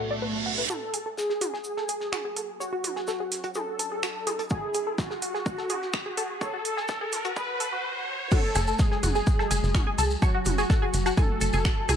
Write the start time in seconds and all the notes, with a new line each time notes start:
Already playing: B1 A2 A3 B3 F#4 C#5 D5, reverse cymbal
0.11 D5
0.22 B4
0.46 F#5
0.58 B4
0.70 F#4 A4 C#5 F#5 G#5, mid tom, riser, shaker
0.94 G#4, open hi-hat, shaker
1.06 A4
1.17 G#4, snare, shaker
1.29 G#4, snare
1.41 F#4, open hi-hat, mid tom, shaker
1.54 G#4, snare
1.64 shaker
1.77 A4, snare
1.89 G#4, open hi-hat, shaker
2.01 snare
2.12 F#4, finger snap, snare, mid tom, shaker
2.25 G#4
2.36 A4, open hi-hat, shaker
2.60 F#4 C#5, shaker
2.73 F#4
2.84 open hi-hat, mid tom, shaker
2.96 G#4, snare
3.07 A4, snare, shaker
3.20 G#4
3.32 snare, open hi-hat, shaker
3.44 F#4, closed hi-hat
3.54 G#4 A4, mid tom, shaker
3.79 A4, open hi-hat, shaker
3.92 G#4
4.03 F#4, finger snap, snare, shaker
4.27 G#4, open hi-hat, mid tom, shaker
4.39 A4, closed hi-hat
4.50 F#4 G#4, kick, shaker
4.74 G#4, open hi-hat, shaker
4.87 A4
4.98 F#4, kick, snare, mid tom, shaker
5.10 G#4, snare
5.22 F#4, open hi-hat, shaker
5.34 G#4, snare
5.46 kick, shaker
5.58 A4, snare
5.69 G#4, open hi-hat, mid tom, shaker
5.82 snare
5.93 F#4, finger snap, kick, snare, shaker
6.06 G#4
6.17 A4, open hi-hat, shaker
6.41 A4 C#5, kick, mid tom, shaker
6.54 F#4
6.65 open hi-hat, shaker
6.77 G#4, snare
6.88 A4, kick, snare, shaker
7.01 G#4
7.12 snare, open hi-hat, mid tom, shaker
7.25 F#4, closed hi-hat
7.36 G#4 B4, kick, swell, shaker
7.60 A4, open hi-hat, shaker
7.73 F#4
8.31 F#3 A3 F#4 A4 F#5 G#5, kick, mid tom, crash, maracas, shaker
8.55 F#1 G#4 G#5, open hi-hat, low woodblock, maracas, shaker
8.67 A4 A5, maracas
8.79 G#3 G#4, kick, snare, shaker, maracas
8.91 G#4 G#5, snare
9.03 F#1 F#4 F#5, open hi-hat, mid tom, shaker, maracas
9.15 G#4 G#5, snare, maracas
9.27 kick, maracas, shaker
9.39 A4 A5, snare, low woodblock
9.51 F#1 G#4 G#5, open hi-hat, shaker, maracas
9.63 F#1, snare, maracas
9.74 F#4 F#5, finger snap, kick, snare, mid tom, maracas, shaker
9.87 G#4 G#5
9.98 C#2 A4 A5, open hi-hat, maracas, shaker
10.10 maracas
10.22 F#3 F#4 C#5 C#6, kick, low woodblock, shaker, maracas
10.35 F#4 F#5
10.45 F#1, open hi-hat, mid tom, maracas, shaker
10.58 G#4 G#5, snare, maracas
10.70 A4 A5, kick, snare, maracas, shaker
10.82 G#4 G#5
10.93 F#1, snare, open hi-hat, shaker, maracas
11.06 F#4 F#5, closed hi-hat, low woodblock, maracas
11.17 A3 G#4 A4 G#5, kick, mid tom, maracas, shaker
11.41 F#1 A4 A5, open hi-hat, shaker, maracas
11.53 F#1 G#4 G#5, maracas
11.65 F#4 F#5, finger snap, kick, snare, shaker, maracas
11.89 C#2 G#4 G#5, open hi-hat, mid tom, low woodblock, shaker, maracas